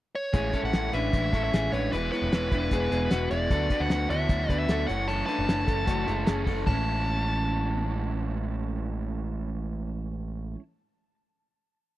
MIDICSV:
0, 0, Header, 1, 6, 480
1, 0, Start_track
1, 0, Key_signature, 3, "major"
1, 0, Tempo, 396040
1, 405, Time_signature, 4, 2, 24, 8
1, 14511, End_track
2, 0, Start_track
2, 0, Title_t, "Lead electric guitar"
2, 0, Program_c, 0, 29
2, 187, Note_on_c, 0, 73, 78
2, 736, Note_off_c, 0, 73, 0
2, 788, Note_on_c, 0, 78, 84
2, 1139, Note_off_c, 0, 78, 0
2, 1144, Note_on_c, 0, 76, 82
2, 1728, Note_off_c, 0, 76, 0
2, 1742, Note_on_c, 0, 76, 87
2, 2070, Note_off_c, 0, 76, 0
2, 2087, Note_on_c, 0, 73, 72
2, 2329, Note_off_c, 0, 73, 0
2, 2333, Note_on_c, 0, 71, 77
2, 2552, Note_off_c, 0, 71, 0
2, 2567, Note_on_c, 0, 71, 87
2, 4003, Note_off_c, 0, 71, 0
2, 4008, Note_on_c, 0, 74, 82
2, 4610, Note_on_c, 0, 78, 94
2, 4624, Note_off_c, 0, 74, 0
2, 4967, Note_off_c, 0, 78, 0
2, 4972, Note_on_c, 0, 76, 97
2, 5554, Note_off_c, 0, 76, 0
2, 5568, Note_on_c, 0, 76, 91
2, 5902, Note_off_c, 0, 76, 0
2, 5907, Note_on_c, 0, 78, 93
2, 6154, Note_on_c, 0, 81, 104
2, 6162, Note_off_c, 0, 78, 0
2, 6362, Note_off_c, 0, 81, 0
2, 6376, Note_on_c, 0, 81, 85
2, 7777, Note_off_c, 0, 81, 0
2, 8082, Note_on_c, 0, 81, 77
2, 12784, Note_off_c, 0, 81, 0
2, 14511, End_track
3, 0, Start_track
3, 0, Title_t, "Clean electric guitar"
3, 0, Program_c, 1, 27
3, 407, Note_on_c, 1, 68, 82
3, 420, Note_on_c, 1, 61, 65
3, 646, Note_off_c, 1, 68, 0
3, 650, Note_off_c, 1, 61, 0
3, 651, Note_on_c, 1, 69, 64
3, 664, Note_on_c, 1, 61, 45
3, 1100, Note_off_c, 1, 69, 0
3, 1107, Note_off_c, 1, 61, 0
3, 1134, Note_on_c, 1, 71, 71
3, 1148, Note_on_c, 1, 62, 52
3, 1582, Note_off_c, 1, 71, 0
3, 1589, Note_off_c, 1, 62, 0
3, 1615, Note_on_c, 1, 69, 67
3, 1623, Note_on_c, 1, 61, 57
3, 1851, Note_off_c, 1, 69, 0
3, 1855, Note_off_c, 1, 61, 0
3, 1860, Note_on_c, 1, 68, 72
3, 1869, Note_on_c, 1, 61, 56
3, 2093, Note_off_c, 1, 68, 0
3, 2098, Note_off_c, 1, 61, 0
3, 2107, Note_on_c, 1, 71, 73
3, 2116, Note_on_c, 1, 62, 52
3, 2329, Note_off_c, 1, 71, 0
3, 2342, Note_off_c, 1, 62, 0
3, 2343, Note_on_c, 1, 71, 87
3, 2352, Note_on_c, 1, 64, 58
3, 2571, Note_off_c, 1, 64, 0
3, 2575, Note_off_c, 1, 71, 0
3, 2580, Note_on_c, 1, 73, 67
3, 2586, Note_on_c, 1, 64, 57
3, 3025, Note_off_c, 1, 73, 0
3, 3028, Note_off_c, 1, 64, 0
3, 3051, Note_on_c, 1, 71, 66
3, 3064, Note_on_c, 1, 62, 52
3, 3289, Note_off_c, 1, 71, 0
3, 3295, Note_off_c, 1, 62, 0
3, 3302, Note_on_c, 1, 68, 80
3, 3309, Note_on_c, 1, 59, 55
3, 3522, Note_off_c, 1, 68, 0
3, 3535, Note_off_c, 1, 59, 0
3, 3537, Note_on_c, 1, 68, 61
3, 3549, Note_on_c, 1, 59, 51
3, 3769, Note_off_c, 1, 68, 0
3, 3772, Note_off_c, 1, 59, 0
3, 3774, Note_on_c, 1, 66, 76
3, 3787, Note_on_c, 1, 59, 56
3, 4007, Note_off_c, 1, 59, 0
3, 4010, Note_off_c, 1, 66, 0
3, 4012, Note_on_c, 1, 64, 71
3, 4023, Note_on_c, 1, 56, 57
3, 4248, Note_off_c, 1, 64, 0
3, 4254, Note_off_c, 1, 56, 0
3, 4256, Note_on_c, 1, 69, 84
3, 4266, Note_on_c, 1, 62, 70
3, 4490, Note_off_c, 1, 69, 0
3, 4495, Note_off_c, 1, 62, 0
3, 4500, Note_on_c, 1, 71, 64
3, 4507, Note_on_c, 1, 62, 50
3, 4943, Note_off_c, 1, 71, 0
3, 4947, Note_off_c, 1, 62, 0
3, 4975, Note_on_c, 1, 73, 75
3, 4980, Note_on_c, 1, 64, 58
3, 5420, Note_off_c, 1, 73, 0
3, 5423, Note_off_c, 1, 64, 0
3, 5451, Note_on_c, 1, 71, 77
3, 5458, Note_on_c, 1, 62, 55
3, 5687, Note_off_c, 1, 71, 0
3, 5690, Note_off_c, 1, 62, 0
3, 5695, Note_on_c, 1, 69, 76
3, 5703, Note_on_c, 1, 62, 55
3, 5915, Note_on_c, 1, 73, 72
3, 5922, Note_off_c, 1, 62, 0
3, 5927, Note_on_c, 1, 64, 56
3, 5928, Note_off_c, 1, 69, 0
3, 6142, Note_off_c, 1, 73, 0
3, 6153, Note_off_c, 1, 64, 0
3, 6157, Note_on_c, 1, 73, 86
3, 6167, Note_on_c, 1, 64, 65
3, 6387, Note_off_c, 1, 73, 0
3, 6392, Note_on_c, 1, 71, 73
3, 6399, Note_off_c, 1, 64, 0
3, 6404, Note_on_c, 1, 62, 56
3, 6846, Note_off_c, 1, 71, 0
3, 6853, Note_off_c, 1, 62, 0
3, 6876, Note_on_c, 1, 69, 61
3, 6892, Note_on_c, 1, 61, 52
3, 7108, Note_off_c, 1, 69, 0
3, 7113, Note_on_c, 1, 66, 72
3, 7124, Note_on_c, 1, 57, 57
3, 7126, Note_off_c, 1, 61, 0
3, 7350, Note_on_c, 1, 64, 69
3, 7355, Note_off_c, 1, 66, 0
3, 7357, Note_off_c, 1, 57, 0
3, 7362, Note_on_c, 1, 56, 52
3, 7594, Note_off_c, 1, 64, 0
3, 7594, Note_on_c, 1, 68, 67
3, 7600, Note_off_c, 1, 56, 0
3, 7604, Note_on_c, 1, 61, 56
3, 7823, Note_off_c, 1, 61, 0
3, 7832, Note_on_c, 1, 69, 67
3, 7836, Note_off_c, 1, 68, 0
3, 7838, Note_on_c, 1, 61, 58
3, 8061, Note_off_c, 1, 61, 0
3, 8075, Note_off_c, 1, 69, 0
3, 8075, Note_on_c, 1, 61, 70
3, 9466, Note_off_c, 1, 61, 0
3, 14511, End_track
4, 0, Start_track
4, 0, Title_t, "Overdriven electric guitar"
4, 0, Program_c, 2, 29
4, 398, Note_on_c, 2, 45, 73
4, 409, Note_on_c, 2, 52, 81
4, 415, Note_on_c, 2, 56, 83
4, 422, Note_on_c, 2, 61, 91
4, 427, Note_on_c, 2, 64, 92
4, 641, Note_off_c, 2, 64, 0
4, 642, Note_off_c, 2, 45, 0
4, 647, Note_off_c, 2, 52, 0
4, 649, Note_off_c, 2, 61, 0
4, 650, Note_off_c, 2, 56, 0
4, 656, Note_on_c, 2, 64, 52
4, 664, Note_on_c, 2, 61, 41
4, 684, Note_on_c, 2, 56, 35
4, 891, Note_off_c, 2, 56, 0
4, 891, Note_off_c, 2, 64, 0
4, 894, Note_on_c, 2, 52, 49
4, 895, Note_off_c, 2, 61, 0
4, 905, Note_on_c, 2, 56, 47
4, 913, Note_on_c, 2, 61, 51
4, 923, Note_on_c, 2, 64, 57
4, 1114, Note_off_c, 2, 64, 0
4, 1129, Note_on_c, 2, 64, 49
4, 1130, Note_off_c, 2, 52, 0
4, 1130, Note_off_c, 2, 61, 0
4, 1136, Note_off_c, 2, 56, 0
4, 1145, Note_on_c, 2, 61, 49
4, 1160, Note_on_c, 2, 56, 39
4, 1368, Note_off_c, 2, 64, 0
4, 1369, Note_off_c, 2, 56, 0
4, 1375, Note_on_c, 2, 45, 61
4, 1376, Note_off_c, 2, 61, 0
4, 1379, Note_on_c, 2, 52, 69
4, 1383, Note_on_c, 2, 56, 69
4, 1392, Note_on_c, 2, 64, 70
4, 1395, Note_on_c, 2, 61, 66
4, 1606, Note_off_c, 2, 64, 0
4, 1611, Note_off_c, 2, 45, 0
4, 1613, Note_off_c, 2, 52, 0
4, 1615, Note_off_c, 2, 56, 0
4, 1621, Note_off_c, 2, 61, 0
4, 1621, Note_on_c, 2, 64, 51
4, 1633, Note_on_c, 2, 61, 39
4, 1647, Note_on_c, 2, 56, 36
4, 1847, Note_off_c, 2, 56, 0
4, 1852, Note_off_c, 2, 61, 0
4, 1854, Note_off_c, 2, 64, 0
4, 1855, Note_on_c, 2, 52, 52
4, 1861, Note_on_c, 2, 56, 55
4, 1867, Note_on_c, 2, 61, 49
4, 1881, Note_on_c, 2, 64, 54
4, 2085, Note_off_c, 2, 64, 0
4, 2091, Note_off_c, 2, 52, 0
4, 2094, Note_off_c, 2, 56, 0
4, 2097, Note_off_c, 2, 61, 0
4, 2100, Note_on_c, 2, 64, 41
4, 2120, Note_on_c, 2, 61, 42
4, 2135, Note_on_c, 2, 56, 41
4, 2333, Note_off_c, 2, 56, 0
4, 2333, Note_off_c, 2, 64, 0
4, 2333, Note_on_c, 2, 52, 72
4, 2344, Note_off_c, 2, 61, 0
4, 2348, Note_on_c, 2, 56, 74
4, 2351, Note_on_c, 2, 64, 79
4, 2355, Note_on_c, 2, 59, 80
4, 2559, Note_off_c, 2, 64, 0
4, 2570, Note_off_c, 2, 52, 0
4, 2574, Note_off_c, 2, 59, 0
4, 2574, Note_on_c, 2, 64, 44
4, 2577, Note_off_c, 2, 56, 0
4, 2589, Note_on_c, 2, 59, 41
4, 2603, Note_on_c, 2, 56, 36
4, 2805, Note_off_c, 2, 56, 0
4, 2809, Note_on_c, 2, 52, 53
4, 2810, Note_off_c, 2, 64, 0
4, 2818, Note_off_c, 2, 59, 0
4, 2819, Note_on_c, 2, 56, 54
4, 2832, Note_on_c, 2, 59, 56
4, 2832, Note_on_c, 2, 64, 68
4, 3035, Note_off_c, 2, 64, 0
4, 3048, Note_off_c, 2, 52, 0
4, 3049, Note_on_c, 2, 64, 51
4, 3053, Note_off_c, 2, 56, 0
4, 3059, Note_off_c, 2, 59, 0
4, 3073, Note_on_c, 2, 59, 45
4, 3082, Note_on_c, 2, 56, 40
4, 3278, Note_off_c, 2, 56, 0
4, 3280, Note_off_c, 2, 59, 0
4, 3284, Note_on_c, 2, 52, 69
4, 3288, Note_off_c, 2, 64, 0
4, 3293, Note_on_c, 2, 56, 82
4, 3295, Note_on_c, 2, 59, 77
4, 3306, Note_on_c, 2, 64, 72
4, 3498, Note_off_c, 2, 64, 0
4, 3512, Note_on_c, 2, 64, 53
4, 3515, Note_off_c, 2, 59, 0
4, 3521, Note_off_c, 2, 56, 0
4, 3525, Note_off_c, 2, 52, 0
4, 3529, Note_on_c, 2, 59, 43
4, 3536, Note_on_c, 2, 56, 45
4, 3755, Note_off_c, 2, 56, 0
4, 3759, Note_off_c, 2, 64, 0
4, 3764, Note_on_c, 2, 52, 61
4, 3767, Note_off_c, 2, 59, 0
4, 3770, Note_on_c, 2, 56, 65
4, 3783, Note_on_c, 2, 59, 61
4, 3792, Note_on_c, 2, 64, 62
4, 3988, Note_off_c, 2, 64, 0
4, 4003, Note_off_c, 2, 59, 0
4, 4003, Note_on_c, 2, 64, 46
4, 4004, Note_off_c, 2, 52, 0
4, 4008, Note_off_c, 2, 56, 0
4, 4018, Note_on_c, 2, 59, 45
4, 4031, Note_on_c, 2, 56, 36
4, 4240, Note_off_c, 2, 59, 0
4, 4244, Note_off_c, 2, 64, 0
4, 4248, Note_off_c, 2, 56, 0
4, 4250, Note_on_c, 2, 50, 68
4, 4253, Note_on_c, 2, 54, 83
4, 4255, Note_on_c, 2, 59, 81
4, 4258, Note_on_c, 2, 66, 85
4, 4267, Note_on_c, 2, 69, 79
4, 4460, Note_off_c, 2, 69, 0
4, 4474, Note_on_c, 2, 69, 49
4, 4475, Note_off_c, 2, 66, 0
4, 4487, Note_off_c, 2, 50, 0
4, 4487, Note_off_c, 2, 59, 0
4, 4489, Note_off_c, 2, 54, 0
4, 4490, Note_on_c, 2, 66, 44
4, 4501, Note_on_c, 2, 59, 41
4, 4713, Note_off_c, 2, 59, 0
4, 4719, Note_off_c, 2, 69, 0
4, 4723, Note_on_c, 2, 54, 58
4, 4727, Note_off_c, 2, 66, 0
4, 4727, Note_on_c, 2, 59, 49
4, 4743, Note_on_c, 2, 66, 65
4, 4747, Note_on_c, 2, 69, 63
4, 4942, Note_off_c, 2, 69, 0
4, 4957, Note_on_c, 2, 69, 54
4, 4960, Note_off_c, 2, 66, 0
4, 4963, Note_off_c, 2, 54, 0
4, 4965, Note_off_c, 2, 59, 0
4, 4975, Note_on_c, 2, 66, 45
4, 4985, Note_on_c, 2, 59, 43
4, 5183, Note_off_c, 2, 59, 0
4, 5190, Note_off_c, 2, 66, 0
4, 5192, Note_on_c, 2, 50, 72
4, 5195, Note_on_c, 2, 54, 72
4, 5196, Note_off_c, 2, 69, 0
4, 5197, Note_on_c, 2, 59, 76
4, 5205, Note_on_c, 2, 66, 70
4, 5210, Note_on_c, 2, 69, 75
4, 5428, Note_off_c, 2, 69, 0
4, 5438, Note_off_c, 2, 50, 0
4, 5439, Note_off_c, 2, 54, 0
4, 5440, Note_off_c, 2, 59, 0
4, 5442, Note_on_c, 2, 69, 47
4, 5444, Note_off_c, 2, 66, 0
4, 5456, Note_on_c, 2, 66, 41
4, 5465, Note_on_c, 2, 59, 41
4, 5667, Note_off_c, 2, 59, 0
4, 5673, Note_off_c, 2, 66, 0
4, 5675, Note_on_c, 2, 54, 50
4, 5681, Note_on_c, 2, 59, 54
4, 5682, Note_off_c, 2, 69, 0
4, 5687, Note_on_c, 2, 66, 52
4, 5697, Note_on_c, 2, 69, 54
4, 5898, Note_off_c, 2, 69, 0
4, 5913, Note_on_c, 2, 69, 50
4, 5918, Note_off_c, 2, 54, 0
4, 5918, Note_off_c, 2, 66, 0
4, 5921, Note_off_c, 2, 59, 0
4, 5923, Note_on_c, 2, 61, 46
4, 5932, Note_on_c, 2, 57, 41
4, 5940, Note_on_c, 2, 52, 40
4, 6138, Note_off_c, 2, 57, 0
4, 6140, Note_off_c, 2, 52, 0
4, 6148, Note_on_c, 2, 42, 70
4, 6149, Note_off_c, 2, 61, 0
4, 6150, Note_on_c, 2, 49, 74
4, 6152, Note_off_c, 2, 69, 0
4, 6153, Note_on_c, 2, 57, 78
4, 6155, Note_on_c, 2, 52, 69
4, 6163, Note_on_c, 2, 61, 93
4, 6167, Note_on_c, 2, 69, 85
4, 6366, Note_off_c, 2, 69, 0
4, 6379, Note_off_c, 2, 61, 0
4, 6381, Note_on_c, 2, 69, 51
4, 6391, Note_off_c, 2, 52, 0
4, 6391, Note_off_c, 2, 57, 0
4, 6393, Note_on_c, 2, 61, 48
4, 6394, Note_off_c, 2, 42, 0
4, 6395, Note_off_c, 2, 49, 0
4, 6406, Note_on_c, 2, 52, 36
4, 6406, Note_on_c, 2, 57, 42
4, 6596, Note_off_c, 2, 52, 0
4, 6604, Note_off_c, 2, 57, 0
4, 6610, Note_on_c, 2, 52, 55
4, 6616, Note_off_c, 2, 61, 0
4, 6618, Note_on_c, 2, 57, 54
4, 6625, Note_off_c, 2, 69, 0
4, 6631, Note_on_c, 2, 61, 57
4, 6639, Note_on_c, 2, 69, 52
4, 6826, Note_off_c, 2, 69, 0
4, 6838, Note_off_c, 2, 61, 0
4, 6841, Note_on_c, 2, 69, 45
4, 6852, Note_on_c, 2, 61, 43
4, 6853, Note_off_c, 2, 57, 0
4, 6861, Note_off_c, 2, 52, 0
4, 6867, Note_on_c, 2, 57, 38
4, 6875, Note_on_c, 2, 52, 44
4, 7078, Note_on_c, 2, 42, 80
4, 7081, Note_off_c, 2, 52, 0
4, 7086, Note_off_c, 2, 57, 0
4, 7086, Note_on_c, 2, 49, 75
4, 7088, Note_off_c, 2, 61, 0
4, 7092, Note_off_c, 2, 69, 0
4, 7096, Note_on_c, 2, 52, 79
4, 7101, Note_on_c, 2, 57, 80
4, 7102, Note_on_c, 2, 61, 90
4, 7106, Note_on_c, 2, 69, 79
4, 7318, Note_off_c, 2, 69, 0
4, 7332, Note_off_c, 2, 61, 0
4, 7332, Note_on_c, 2, 69, 57
4, 7335, Note_off_c, 2, 57, 0
4, 7338, Note_off_c, 2, 42, 0
4, 7342, Note_off_c, 2, 52, 0
4, 7343, Note_off_c, 2, 49, 0
4, 7347, Note_on_c, 2, 61, 42
4, 7349, Note_on_c, 2, 57, 47
4, 7356, Note_on_c, 2, 52, 42
4, 7554, Note_off_c, 2, 52, 0
4, 7554, Note_off_c, 2, 57, 0
4, 7567, Note_off_c, 2, 61, 0
4, 7568, Note_on_c, 2, 52, 55
4, 7569, Note_on_c, 2, 57, 58
4, 7582, Note_on_c, 2, 61, 65
4, 7585, Note_off_c, 2, 69, 0
4, 7597, Note_on_c, 2, 69, 61
4, 7789, Note_off_c, 2, 69, 0
4, 7798, Note_off_c, 2, 61, 0
4, 7804, Note_on_c, 2, 69, 57
4, 7812, Note_on_c, 2, 61, 48
4, 7813, Note_off_c, 2, 57, 0
4, 7819, Note_off_c, 2, 52, 0
4, 7827, Note_on_c, 2, 57, 47
4, 7834, Note_on_c, 2, 52, 46
4, 8017, Note_on_c, 2, 45, 79
4, 8033, Note_off_c, 2, 52, 0
4, 8048, Note_on_c, 2, 52, 82
4, 8061, Note_off_c, 2, 69, 0
4, 8065, Note_off_c, 2, 61, 0
4, 8072, Note_off_c, 2, 57, 0
4, 8084, Note_on_c, 2, 56, 79
4, 8106, Note_on_c, 2, 61, 84
4, 8130, Note_on_c, 2, 64, 82
4, 12767, Note_off_c, 2, 45, 0
4, 12798, Note_off_c, 2, 52, 0
4, 12834, Note_off_c, 2, 56, 0
4, 12856, Note_off_c, 2, 61, 0
4, 12880, Note_off_c, 2, 64, 0
4, 14511, End_track
5, 0, Start_track
5, 0, Title_t, "Picked electric bass"
5, 0, Program_c, 3, 34
5, 412, Note_on_c, 3, 33, 89
5, 606, Note_off_c, 3, 33, 0
5, 766, Note_on_c, 3, 33, 82
5, 864, Note_off_c, 3, 33, 0
5, 890, Note_on_c, 3, 33, 92
5, 1085, Note_off_c, 3, 33, 0
5, 1129, Note_on_c, 3, 33, 75
5, 1325, Note_off_c, 3, 33, 0
5, 1373, Note_on_c, 3, 33, 97
5, 1567, Note_off_c, 3, 33, 0
5, 1610, Note_on_c, 3, 33, 81
5, 1806, Note_off_c, 3, 33, 0
5, 1857, Note_on_c, 3, 33, 87
5, 2050, Note_off_c, 3, 33, 0
5, 2087, Note_on_c, 3, 33, 96
5, 2284, Note_off_c, 3, 33, 0
5, 2339, Note_on_c, 3, 28, 93
5, 2531, Note_off_c, 3, 28, 0
5, 2689, Note_on_c, 3, 28, 88
5, 2786, Note_off_c, 3, 28, 0
5, 3051, Note_on_c, 3, 28, 92
5, 3246, Note_off_c, 3, 28, 0
5, 3289, Note_on_c, 3, 28, 94
5, 3485, Note_off_c, 3, 28, 0
5, 3533, Note_on_c, 3, 28, 86
5, 3727, Note_off_c, 3, 28, 0
5, 3770, Note_on_c, 3, 28, 90
5, 3965, Note_off_c, 3, 28, 0
5, 4008, Note_on_c, 3, 28, 90
5, 4203, Note_off_c, 3, 28, 0
5, 4250, Note_on_c, 3, 38, 89
5, 4444, Note_off_c, 3, 38, 0
5, 4609, Note_on_c, 3, 38, 85
5, 4705, Note_off_c, 3, 38, 0
5, 4727, Note_on_c, 3, 38, 107
5, 4922, Note_off_c, 3, 38, 0
5, 4965, Note_on_c, 3, 38, 97
5, 5161, Note_off_c, 3, 38, 0
5, 5201, Note_on_c, 3, 38, 95
5, 5398, Note_off_c, 3, 38, 0
5, 5446, Note_on_c, 3, 38, 85
5, 5641, Note_off_c, 3, 38, 0
5, 5678, Note_on_c, 3, 38, 89
5, 5876, Note_off_c, 3, 38, 0
5, 5931, Note_on_c, 3, 30, 94
5, 6320, Note_off_c, 3, 30, 0
5, 6529, Note_on_c, 3, 30, 86
5, 6624, Note_off_c, 3, 30, 0
5, 6642, Note_on_c, 3, 30, 88
5, 6838, Note_off_c, 3, 30, 0
5, 6885, Note_on_c, 3, 30, 81
5, 7080, Note_off_c, 3, 30, 0
5, 7120, Note_on_c, 3, 30, 98
5, 7316, Note_off_c, 3, 30, 0
5, 7367, Note_on_c, 3, 30, 100
5, 7560, Note_off_c, 3, 30, 0
5, 7608, Note_on_c, 3, 30, 95
5, 7801, Note_off_c, 3, 30, 0
5, 7838, Note_on_c, 3, 30, 95
5, 8034, Note_off_c, 3, 30, 0
5, 8081, Note_on_c, 3, 33, 78
5, 12782, Note_off_c, 3, 33, 0
5, 14511, End_track
6, 0, Start_track
6, 0, Title_t, "Drums"
6, 408, Note_on_c, 9, 42, 82
6, 409, Note_on_c, 9, 36, 96
6, 530, Note_off_c, 9, 36, 0
6, 530, Note_off_c, 9, 42, 0
6, 643, Note_on_c, 9, 42, 54
6, 648, Note_on_c, 9, 36, 69
6, 765, Note_off_c, 9, 42, 0
6, 769, Note_off_c, 9, 36, 0
6, 888, Note_on_c, 9, 42, 79
6, 890, Note_on_c, 9, 38, 94
6, 1009, Note_off_c, 9, 42, 0
6, 1011, Note_off_c, 9, 38, 0
6, 1130, Note_on_c, 9, 42, 58
6, 1251, Note_off_c, 9, 42, 0
6, 1372, Note_on_c, 9, 42, 79
6, 1373, Note_on_c, 9, 36, 82
6, 1494, Note_off_c, 9, 36, 0
6, 1494, Note_off_c, 9, 42, 0
6, 1612, Note_on_c, 9, 36, 78
6, 1619, Note_on_c, 9, 42, 72
6, 1733, Note_off_c, 9, 36, 0
6, 1741, Note_off_c, 9, 42, 0
6, 1859, Note_on_c, 9, 42, 96
6, 1865, Note_on_c, 9, 38, 93
6, 1980, Note_off_c, 9, 42, 0
6, 1986, Note_off_c, 9, 38, 0
6, 2100, Note_on_c, 9, 42, 60
6, 2221, Note_off_c, 9, 42, 0
6, 2337, Note_on_c, 9, 42, 86
6, 2458, Note_off_c, 9, 42, 0
6, 2585, Note_on_c, 9, 42, 51
6, 2706, Note_off_c, 9, 42, 0
6, 2818, Note_on_c, 9, 42, 80
6, 2821, Note_on_c, 9, 38, 96
6, 2940, Note_off_c, 9, 42, 0
6, 2942, Note_off_c, 9, 38, 0
6, 3051, Note_on_c, 9, 36, 85
6, 3053, Note_on_c, 9, 42, 59
6, 3172, Note_off_c, 9, 36, 0
6, 3175, Note_off_c, 9, 42, 0
6, 3284, Note_on_c, 9, 42, 89
6, 3288, Note_on_c, 9, 36, 82
6, 3405, Note_off_c, 9, 42, 0
6, 3409, Note_off_c, 9, 36, 0
6, 3539, Note_on_c, 9, 42, 69
6, 3660, Note_off_c, 9, 42, 0
6, 3766, Note_on_c, 9, 42, 91
6, 3771, Note_on_c, 9, 38, 94
6, 3887, Note_off_c, 9, 42, 0
6, 3893, Note_off_c, 9, 38, 0
6, 4009, Note_on_c, 9, 42, 62
6, 4130, Note_off_c, 9, 42, 0
6, 4247, Note_on_c, 9, 36, 94
6, 4251, Note_on_c, 9, 42, 80
6, 4368, Note_off_c, 9, 36, 0
6, 4372, Note_off_c, 9, 42, 0
6, 4485, Note_on_c, 9, 36, 75
6, 4487, Note_on_c, 9, 42, 59
6, 4607, Note_off_c, 9, 36, 0
6, 4609, Note_off_c, 9, 42, 0
6, 4726, Note_on_c, 9, 42, 70
6, 4728, Note_on_c, 9, 38, 91
6, 4847, Note_off_c, 9, 42, 0
6, 4849, Note_off_c, 9, 38, 0
6, 4972, Note_on_c, 9, 42, 57
6, 5094, Note_off_c, 9, 42, 0
6, 5203, Note_on_c, 9, 36, 90
6, 5203, Note_on_c, 9, 42, 83
6, 5324, Note_off_c, 9, 36, 0
6, 5324, Note_off_c, 9, 42, 0
6, 5445, Note_on_c, 9, 36, 80
6, 5453, Note_on_c, 9, 42, 73
6, 5566, Note_off_c, 9, 36, 0
6, 5574, Note_off_c, 9, 42, 0
6, 5680, Note_on_c, 9, 42, 96
6, 5685, Note_on_c, 9, 38, 104
6, 5801, Note_off_c, 9, 42, 0
6, 5807, Note_off_c, 9, 38, 0
6, 5928, Note_on_c, 9, 42, 67
6, 6049, Note_off_c, 9, 42, 0
6, 6161, Note_on_c, 9, 42, 76
6, 6282, Note_off_c, 9, 42, 0
6, 6405, Note_on_c, 9, 42, 62
6, 6526, Note_off_c, 9, 42, 0
6, 6651, Note_on_c, 9, 42, 77
6, 6653, Note_on_c, 9, 38, 96
6, 6772, Note_off_c, 9, 42, 0
6, 6774, Note_off_c, 9, 38, 0
6, 6881, Note_on_c, 9, 36, 86
6, 6884, Note_on_c, 9, 42, 58
6, 7003, Note_off_c, 9, 36, 0
6, 7005, Note_off_c, 9, 42, 0
6, 7119, Note_on_c, 9, 36, 85
6, 7121, Note_on_c, 9, 42, 91
6, 7240, Note_off_c, 9, 36, 0
6, 7242, Note_off_c, 9, 42, 0
6, 7367, Note_on_c, 9, 42, 73
6, 7488, Note_off_c, 9, 42, 0
6, 7596, Note_on_c, 9, 42, 94
6, 7602, Note_on_c, 9, 38, 105
6, 7717, Note_off_c, 9, 42, 0
6, 7723, Note_off_c, 9, 38, 0
6, 7837, Note_on_c, 9, 36, 80
6, 7842, Note_on_c, 9, 46, 59
6, 7958, Note_off_c, 9, 36, 0
6, 7963, Note_off_c, 9, 46, 0
6, 8080, Note_on_c, 9, 36, 79
6, 8086, Note_on_c, 9, 43, 89
6, 8086, Note_on_c, 9, 55, 78
6, 8201, Note_off_c, 9, 36, 0
6, 8207, Note_off_c, 9, 43, 0
6, 8207, Note_off_c, 9, 55, 0
6, 14511, End_track
0, 0, End_of_file